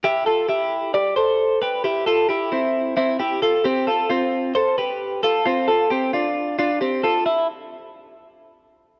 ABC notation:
X:1
M:4/4
L:1/8
Q:1/4=133
K:C
V:1 name="Clean electric guitar"
[EG] [FA] [EG]2 [Gd] [Ac]2 [GB] | [EG] [FA] [EG] [CE]2 [CE] [EG] [FA] | [CG] [FA] [CF]2 [Ac] [GB]2 [FA] | [CF] [FA] [CG] [DF]2 [DF] [CG] [FA] |
E z6 z |]